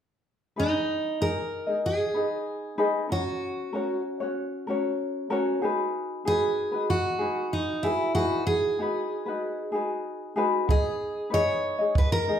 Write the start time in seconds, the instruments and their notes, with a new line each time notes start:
0.56 ukulele D#4 G#4 B4 D#5, steel-string acoustic guitar D#4
1.20 ukulele D#4 G#4 D#5, steel-string acoustic guitar A#4
1.67 ukulele D#4 G#4 D#5
1.86 steel-string acoustic guitar G#4
2.14 ukulele D#4 G#4 B4 D#5
2.78 ukulele D#4 G#4 B4 D#5
3.09 ukulele C#4 F#4 A#4 C#5, steel-string acoustic guitar F#4
3.73 ukulele C#4 F#4 A#4 C#5
4.20 ukulele C#4 F#4 C#5
4.67 ukulele C#4 F#4 A#4 C#5
5.30 ukulele C#4 F#4 A#4 C#5
5.62 ukulele D#4 F#4 G#4 B4
6.25 ukulele D#4 F#4 G#4 B4, steel-string acoustic guitar G#4
6.72 ukulele D#4 F#4 B4
6.90 steel-string acoustic guitar F#4
7.18 ukulele D#4 F#4 G#4 B4
7.53 steel-string acoustic guitar D#4
7.83 steel-string acoustic guitar E4, ukulele F#4 G#4 B4
8.15 ukulele D#4 F#4 G#4 B4, steel-string acoustic guitar F#4
8.47 steel-string acoustic guitar G#4
8.79 ukulele D#4 F#4 G#4 B4
9.26 ukulele D#4 F#4 B4
9.72 ukulele D#4 F#4 G#4 B4
10.36 ukulele D#4 F#4 G#4 B4
10.68 ukulele D#4 G#4 B4 D#5, steel-string acoustic guitar G#4, kick
11.30 ukulele D#4 G#4 B4 D#5, steel-string acoustic guitar C#5
11.79 ukulele D#4 G#4 D#5
11.95 steel-string acoustic guitar B4, kick
12.12 steel-string acoustic guitar A#4
12.28 ukulele D#4 G#4 D#5